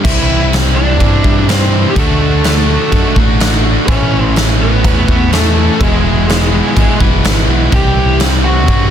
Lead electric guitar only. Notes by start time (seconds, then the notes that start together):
0.05 E4 E5
0.75 D4 D5
1.49 C4 C5
1.90 G4
1.98 A3 A4
2.48 A3 A4
3.87 C#4 C#5
4.62 B3 B4
5.33 A3 A4
5.82 G#3 G#4
6.30 G#3 G#4
7.74 G4 G5
8.44 F#4 F#5